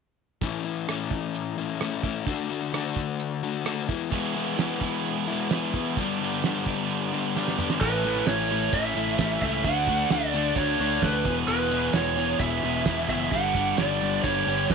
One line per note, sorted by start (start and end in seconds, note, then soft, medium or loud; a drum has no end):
0.41 0.87 A2 medium
0.41 0.87 E3 medium
0.41 0.66 A3 medium
0.41 0.65 C#4 medium
0.41 0.64 E4 medium
0.41 kick medium
0.41 closed hi-hat medium
0.65 0.88 A3 soft
0.65 0.88 C#4 medium
0.65 0.89 E4 medium
0.88 1.81 A2 medium
0.88 1.79 E3 medium
0.88 1.59 A3 medium
0.88 1.58 C#4 medium
0.88 1.57 E4 medium
0.88 cross-stick medium
0.88 closed hi-hat medium
1.11 kick medium
1.35 closed hi-hat medium
1.58 1.80 A3 medium
1.58 1.81 C#4 medium
1.58 1.81 E4 medium
1.80 2.26 E3 medium
1.80 2.04 A3 medium
1.80 2.03 C#4 medium
1.80 2.02 E4 medium
1.80 cross-stick loud
1.80 closed hi-hat medium
2.03 2.26 A3 medium
2.03 2.26 C#4 medium
2.03 2.25 E4 medium
2.03 kick medium
2.27 2.72 D3 medium
2.27 2.50 A3 medium
2.27 2.49 D4 medium
2.27 2.48 F#4 loud
2.27 kick medium
2.27 closed hi-hat soft
2.49 2.73 A3 medium
2.49 2.73 D4 medium
2.49 2.74 F#4 medium
2.73 3.64 D3 medium
2.73 3.43 A3 medium
2.73 3.43 D4 medium
2.73 3.42 F#4 medium
2.73 cross-stick loud
2.73 closed hi-hat medium
2.96 kick medium
3.20 closed hi-hat medium
3.43 3.65 A3 medium
3.43 3.65 D4 medium
3.43 3.66 F#4 medium
3.65 3.87 D3 medium
3.65 3.88 A3 medium
3.65 3.88 D4 medium
3.65 3.88 F#4 medium
3.65 cross-stick loud
3.65 closed hi-hat medium
3.88 4.10 E3 medium
3.88 4.10 G#3 medium
3.88 4.12 B3 medium
3.88 4.12 E4 medium
3.88 kick medium
4.12 4.80 E2 medium
4.12 4.80 B2 medium
4.12 4.81 E3 medium
4.12 4.36 G#3 medium
4.12 4.83 B3 medium
4.12 4.81 E4 medium
4.12 4.80 G#4 medium
4.12 kick medium
4.12 closed hi-hat soft
4.35 4.58 G#3 medium
4.35 4.59 B3 medium
4.35 4.59 E4 medium
4.58 5.50 E3 medium
4.58 5.28 G#3 medium
4.58 5.29 B3 medium
4.58 5.27 E4 medium
4.58 snare loud
4.58 closed hi-hat medium
4.81 5.49 E2 medium
4.81 5.50 B2 medium
4.81 5.51 E3 medium
4.81 5.52 B3 medium
4.81 5.50 E4 medium
4.81 5.49 G#4 medium
4.81 kick medium
5.05 closed hi-hat medium
5.28 5.50 G#3 medium
5.28 5.52 B3 medium
5.28 5.52 E4 medium
5.50 5.95 E2 medium
5.50 5.96 B2 medium
5.50 5.96 E3 medium
5.50 5.75 G#3 medium
5.50 5.99 B3 medium
5.50 5.97 E4 medium
5.50 5.97 G#4 medium
5.50 snare loud
5.50 closed hi-hat medium
5.74 5.97 G#3 soft
5.74 5.98 B3 medium
5.74 5.96 E4 medium
5.74 kick medium
5.97 6.65 G2 medium
5.97 6.65 D3 medium
5.97 6.66 G3 medium
5.97 6.66 B3 medium
5.97 6.66 D4 medium
5.97 6.66 G4 medium
5.97 kick medium
5.97 closed hi-hat medium
6.21 6.43 G3 soft
6.21 6.44 B3 medium
6.21 6.44 D4 medium
6.44 7.36 G2 medium
6.44 7.34 D3 loud
6.44 7.14 G3 medium
6.44 7.13 B3 medium
6.44 7.12 D4 medium
6.44 snare loud
6.44 closed hi-hat medium
6.66 7.33 G2 medium
6.66 7.35 D3 medium
6.66 7.35 G3 medium
6.66 7.35 B3 medium
6.66 7.34 D4 medium
6.66 7.34 G4 medium
6.66 kick medium
6.90 closed hi-hat medium
7.13 7.35 G3 medium
7.13 7.36 B3 medium
7.13 7.36 D4 medium
7.35 7.80 G2 medium
7.35 7.80 D3 medium
7.35 7.81 G3 medium
7.35 7.81 B3 medium
7.35 7.81 D4 medium
7.35 7.81 G4 medium
7.35 snare soft
7.48 snare medium
7.58 7.81 G3 medium
7.58 7.80 B3 medium
7.58 7.80 D4 medium
7.58 mid tom medium
7.70 snare medium
7.81 8.21 A1 medium
7.81 8.03 A2 medium
7.81 8.03 E3 medium
7.81 8.05 A3 loud
7.81 8.04 C#4 loud
7.81 8.04 E4 medium
7.81 8.29 B4 medium
7.81 kick medium
7.81 crash medium
8.04 8.27 A2 medium
8.04 8.27 E3 medium
8.04 8.28 A3 medium
8.04 8.28 C#4 medium
8.04 8.28 E4 medium
8.04 closed hi-hat medium
8.16 snare soft
8.26 8.68 A1 medium
8.26 8.49 A2 medium
8.26 8.49 E3 loud
8.26 8.50 A3 medium
8.26 8.50 C#4 medium
8.26 8.50 E4 medium
8.26 8.73 C#5 medium
8.26 snare loud
8.26 closed hi-hat medium
8.49 8.72 A2 medium
8.49 8.73 E3 medium
8.49 8.74 A3 medium
8.49 8.74 C#4 medium
8.49 8.74 E4 medium
8.49 closed hi-hat medium
8.73 8.93 A1 medium
8.73 8.95 A2 medium
8.73 8.96 E3 medium
8.73 8.96 A3 medium
8.73 8.96 C#4 medium
8.73 8.97 E4 loud
8.73 9.41 E5 medium
8.73 kick loud
8.73 closed hi-hat medium
8.96 9.16 A1 medium
8.96 9.17 A2 medium
8.96 9.18 E3 medium
8.96 9.19 A3 medium
8.96 9.19 C#4 medium
8.96 9.19 E4 medium
8.96 closed hi-hat medium
9.07 snare soft
9.18 9.39 A1 medium
9.18 9.41 A2 medium
9.18 9.41 E3 medium
9.18 9.42 A3 medium
9.18 9.42 C#4 medium
9.18 9.42 E4 loud
9.18 kick medium
9.18 snare loud
9.18 closed hi-hat medium
9.41 9.62 C#2 medium
9.41 9.64 A2 medium
9.41 9.64 E3 medium
9.41 9.64 A3 medium
9.41 9.64 C#4 medium
9.41 9.65 E4 medium
9.41 9.66 E5 loud
9.41 kick medium
9.41 closed hi-hat medium
9.64 10.04 D2 medium
9.64 9.88 D3 medium
9.64 9.89 A3 medium
9.64 9.89 D4 loud
9.64 9.89 F#4 medium
9.64 10.08 F#5 loud
9.64 kick medium
9.64 closed hi-hat medium
9.87 10.11 D3 medium
9.87 10.11 A3 medium
9.87 10.12 D4 medium
9.87 10.12 F#4 medium
9.87 kick medium
9.87 closed hi-hat medium
10.10 10.51 D2 medium
10.10 10.34 D3 medium
10.10 10.34 A3 medium
10.10 10.34 D4 medium
10.10 10.35 F#4 loud
10.10 10.56 D5 medium
10.10 snare loud
10.10 closed hi-hat medium
10.33 10.56 D3 medium
10.33 10.57 A3 medium
10.33 10.57 D4 medium
10.33 10.58 F#4 medium
10.33 closed hi-hat medium
10.56 10.77 D2 medium
10.56 10.79 D3 medium
10.56 10.79 A3 medium
10.56 10.80 D4 medium
10.56 10.80 F#4 loud
10.56 11.04 C#5 medium
10.56 kick loud
10.56 closed hi-hat medium
10.79 11.00 D2 medium
10.79 11.02 D3 medium
10.79 11.03 A3 medium
10.79 11.03 D4 medium
10.79 11.03 F#4 medium
10.79 closed hi-hat medium
11.02 11.23 D2 medium
11.02 11.25 D3 medium
11.02 11.25 A3 medium
11.02 11.25 D4 medium
11.02 11.25 F#4 loud
11.02 11.35 B4 medium
11.02 kick medium
11.02 snare loud
11.02 closed hi-hat medium
11.25 11.46 E1 medium
11.25 11.48 E2 medium
11.25 11.48 B2 medium
11.25 11.48 E3 medium
11.25 11.49 G#3 medium
11.25 11.50 B3 medium
11.25 11.49 G#4 medium
11.25 kick loud
11.25 closed hi-hat medium
11.48 11.88 E1 medium
11.48 11.71 E2 medium
11.48 11.71 B2 medium
11.48 11.71 E3 medium
11.48 11.72 G#3 loud
11.48 11.73 B3 medium
11.48 11.72 G#4 loud
11.48 11.91 B4 loud
11.48 closed hi-hat medium
11.71 11.94 E2 medium
11.71 11.94 B2 medium
11.71 11.94 E3 medium
11.71 11.95 G#3 medium
11.71 11.96 B3 medium
11.71 11.96 G#4 medium
11.71 closed hi-hat medium
11.93 12.34 E1 medium
11.93 12.16 E2 loud
11.93 12.17 B2 medium
11.93 12.17 E3 medium
11.93 12.18 G#3 loud
11.93 12.19 B3 loud
11.93 12.18 G#4 loud
11.93 12.40 C#5 medium
11.93 snare loud
11.93 closed hi-hat medium
12.17 12.40 E2 medium
12.17 12.41 B2 medium
12.17 12.41 E3 medium
12.17 12.41 G#3 medium
12.17 12.42 B3 medium
12.17 12.42 G#4 loud
12.17 closed hi-hat medium
12.39 12.60 E1 medium
12.39 12.63 E2 medium
12.39 12.63 B2 medium
12.39 12.64 E3 medium
12.39 12.64 G#3 medium
12.39 12.65 B3 medium
12.39 12.65 G#4 loud
12.39 13.08 E5 medium
12.39 kick loud
12.39 closed hi-hat medium
12.62 12.83 E1 medium
12.62 12.86 E2 medium
12.62 12.86 B2 medium
12.62 12.86 E3 medium
12.62 12.87 G#3 medium
12.62 12.88 B3 medium
12.62 12.87 G#4 medium
12.62 closed hi-hat medium
12.85 13.06 E1 medium
12.85 13.08 E2 medium
12.85 13.09 B2 medium
12.85 13.10 E3 medium
12.85 13.10 G#3 medium
12.85 13.11 B3 medium
12.85 13.10 G#4 loud
12.85 kick medium
12.85 snare loud
12.85 closed hi-hat medium
13.08 13.29 F#1 medium
13.08 13.31 E2 medium
13.08 13.31 B2 medium
13.08 13.32 E3 medium
13.08 13.32 G#3 medium
13.08 13.34 B3 medium
13.08 13.32 G#4 medium
13.08 13.33 E5 medium
13.08 kick medium
13.08 closed hi-hat medium
13.31 13.72 G1 medium
13.31 13.54 G2 medium
13.31 13.54 D3 medium
13.31 13.54 G3 medium
13.31 13.56 B3 medium
13.31 13.55 D4 loud
13.31 13.56 G4 loud
13.31 13.75 F#5 loud
13.31 kick medium
13.31 closed hi-hat medium
13.54 13.77 G2 medium
13.54 13.77 D3 medium
13.54 13.78 G3 medium
13.54 13.79 B3 medium
13.54 13.79 D4 medium
13.54 13.79 G4 medium
13.54 kick medium
13.54 closed hi-hat medium
13.78 14.18 G1 medium
13.78 14.01 G2 medium
13.78 14.01 D3 medium
13.78 14.01 G3 medium
13.78 14.02 B3 medium
13.78 14.02 D4 medium
13.78 14.02 G4 loud
13.78 14.23 D5 medium
13.78 snare loud
13.78 closed hi-hat medium
14.01 14.23 G2 medium
14.01 14.23 D3 medium
14.01 14.24 G3 medium
14.01 14.24 B3 medium
14.01 14.24 D4 medium
14.01 14.25 G4 medium
14.01 closed hi-hat medium
14.24 14.44 G1 medium
14.24 14.46 G2 medium
14.24 14.46 D3 medium
14.24 14.47 G3 medium
14.24 14.47 B3 medium
14.24 14.47 D4 loud
14.24 14.47 G4 loud
14.24 14.71 C#5 medium
14.24 kick loud
14.24 closed hi-hat medium
14.47 14.67 G1 medium
14.47 14.69 G2 medium
14.47 14.70 D3 medium
14.47 14.70 G3 medium
14.47 14.70 B3 medium
14.47 14.70 D4 medium
14.47 14.71 G4 medium
14.47 closed hi-hat medium
14.70 14.75 G1 medium
14.70 14.75 G2 medium
14.70 14.75 D3 medium
14.70 14.75 G3 medium
14.70 14.75 B3 medium
14.70 14.75 D4 loud
14.70 14.75 B4 medium
14.70 kick medium
14.70 snare loud
14.70 closed hi-hat medium